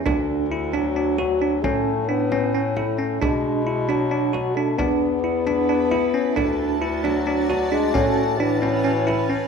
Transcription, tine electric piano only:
\new Staff \with { instrumentName = "Tine electric piano" } { \time 7/8 \key d \lydian \tempo 4 = 133 d'4 e'8 d'8 d'8 fis'8 d'8 | cis'4 d'8 cis'8 cis'8 e'8 cis'8 | d'4 e'8 d'8 d'8 fis'8 d'8 | d'4 e'8 d'8 d'8 e'8 cis'8 |
d'4 e'8 d'8 d'8 fis'8 d'8 | cis'4 d'8 cis'8 cis'8 e'8 cis'8 | }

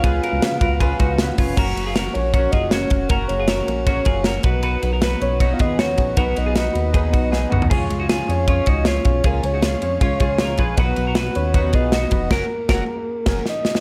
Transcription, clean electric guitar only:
\new Staff \with { instrumentName = "Clean electric guitar" } { \time 4/4 \key fis \major \tempo 4 = 156 <eis' gis'>8 <fis' ais'>4 <fis' ais'>8 <eis' gis'>8 <dis' fis'>4 <cis' eis'>8 | <fis' ais'>8. <eis' gis'>16 <fis' ais'>4 <cis' fis'>8 <eis' gis'>8 <cis' fis'>4 | <fis' ais'>8. <eis' gis'>16 <fis' ais'>4 <cis' fis'>8 <eis' gis'>8 <fis' ais'>8 <fis' b'>8 | <fis' b'>8. <fis' ais'>16 <fis' b'>4 <dis' fis'>8 <eis' gis'>8 <dis' fis'>4 |
<fis' ais'>8. <eis' gis'>16 <dis' fis'>4 <dis' gis'>8 <dis' fis'>8 <dis' gis'>8 <dis' fis'>8 | <eis' gis'>8. <dis' fis'>16 <eis' gis'>4 <cis' eis'>8 <dis' fis'>8 <cis' eis'>4 | <eis' gis'>8. <dis' fis'>16 <eis' gis'>4 <cis' eis'>8 <eis' gis'>8 <eis' ais'>8 <gis' b'>8 | <fis' b'>8. <fis' ais'>16 <fis' b'>4 <dis' fis'>8 <eis' gis'>8 <dis' fis'>4 |
<fis' ais'>8 r8 <fis' ais'>8 r2 r8 | }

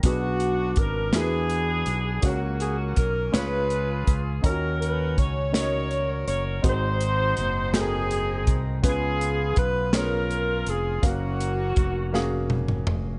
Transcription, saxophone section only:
\new Staff \with { instrumentName = "Saxophone section" } { \time 6/8 \key fis \major \tempo 4. = 55 << { fis'4 ais'8 gis'4. | fis'4 ais'8 b'4 r8 | ais'4 cis''8 cis''4 cis''8 | bis'4. gis'4 r8 |
gis'4 b'8 ais'4 gis'8 | fis'2 r4 | } \\ { d'4. <b d'>4. | <ais cis'>4. <eis' gis'>4. | <cis' fis'>4. <fis' ais'>4. | <dis' fis'>4. <bis dis'>4. |
<b eis'>4. eis'4. | <ais cis'>2 r4 | } >> }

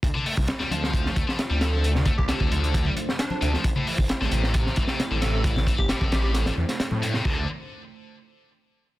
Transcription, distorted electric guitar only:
\new Staff \with { instrumentName = "Distorted electric guitar" } { \clef bass \time 4/4 \key d \minor \tempo 4 = 133 r16 d16 a16 r8 g16 f4 a16 f16 r16 g16 f8 | a16 r16 a16 r16 d8 d8. g16 r4 c16 f16 | r16 a,16 e16 r8 d16 c4 e16 c16 r16 d16 c8 | e16 r16 e16 r16 a,8 a,8. d16 r4 g,16 c16 |
d8 r2. r8 | }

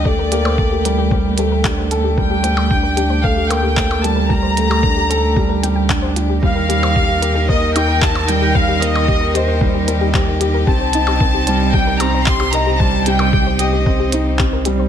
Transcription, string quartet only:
\new Staff \with { instrumentName = "String quartet" } { \time 4/4 \key g \minor \tempo 4 = 113 << { a1~ | a1~ | a1 | <ees ees' bes'>1~ |
<ees ees' bes'>1 | <c c'>1~ | <c c'>1 | } \\ { g'1~ | g'1~ | g'1 | g'1~ |
g'1~ | g'1~ | g'1 | } >> }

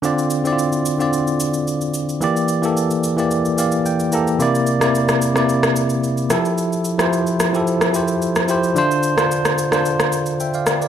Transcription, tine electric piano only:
\new Staff \with { instrumentName = "Tine electric piano" } { \time 4/4 \key d \minor \tempo 4 = 110 << { r1 | r2 r8 f''8 g''8 bes''8 | r1 | r1 |
r2. <e'' g''>16 <d'' f''>8 d''16 | } \\ { <d c' f' d''>8 r16 <d c' e' f' d''>8. r16 <d c' f' d''>4. r8. | <e bes g' d''>8 r16 <e bes g' a'>8. r16 <e bes g' d''>8 r16 <e bes g' d''>8. r16 <e bes g' a'>8 | <c bes e' d''>8 r16 <c bes e' d''>8. r16 <c bes e' d''>4. r16 <f e' g' a'>8~ | <f e' g' a'>8 r16 <f e' g' c''>8. r16 <f e' g' a'>8 r16 <f e' g' c''>8. r16 <f e' g' c''>8 |
<d d' f' c''>8 r16 <d d' f' c''>8. r16 <d d' f' c''>4. r8. | } >> }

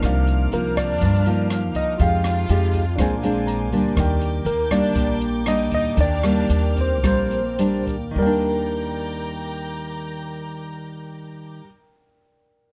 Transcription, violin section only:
\new Staff \with { instrumentName = "Violin section" } { \time 4/4 \key ees \major \tempo 4 = 116 r4 bes8 d'4. r8 ees'8 | f'2. r4 | r4 bes8 d'4 r8 ees'8 ees'8 | d'4. c'8 c'4. r8 |
bes''1~ | bes''1 | }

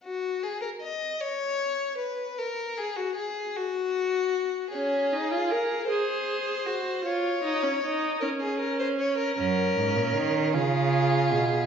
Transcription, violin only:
\new Staff \with { instrumentName = "Violin" } { \time 6/8 \key cis \mixolydian \tempo 4. = 52 fis'8 gis'16 ais'16 dis''8 cis''4 b'8 | ais'8 gis'16 fis'16 gis'8 fis'4. | gis'4. bis'4. | cis''4. ais'16 gis'16 ais'16 bis'16 cis''16 ais'16 |
ais'4. gis'4. | }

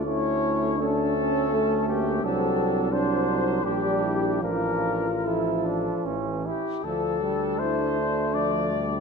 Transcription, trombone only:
\new Staff \with { instrumentName = "Trombone" } { \clef bass \time 3/4 \key d \minor \tempo 4 = 81 a4 a2 | fis4 fis4 g4 | f4 f4 e8 r8 | f8 g8 a2 | }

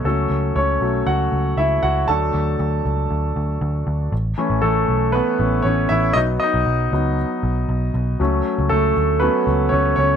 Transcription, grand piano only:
<<
  \new Staff \with { instrumentName = "Grand piano" } { \time 4/4 \key a \major \tempo 4 = 118 a'4 <cis' cis''>4 <fis' fis''>4 <e' e''>8 <fis' fis''>8 | <a' a''>4 r2. | r4 <a a'>4 <b b'>4 <cis' cis''>8 <e' e''>8 | dis''8 <dis' dis''>2. r8 |
r4 <a a'>4 <b b'>4 <cis' cis''>8 <cis' cis''>8 | }
  \new Staff \with { instrumentName = "Grand piano" } { \time 4/4 \key a \major <fis a cis'>4. <fis a cis'>8 r2 | <fis a d'>4. r2 r8 | r8 <e a cis'>4. r8 <e a cis'>8 r4 | <fis b dis'>4. <fis b dis'>8 r2 |
<fis a cis'>4. r8 <fis a cis'>8 r4. | }
>>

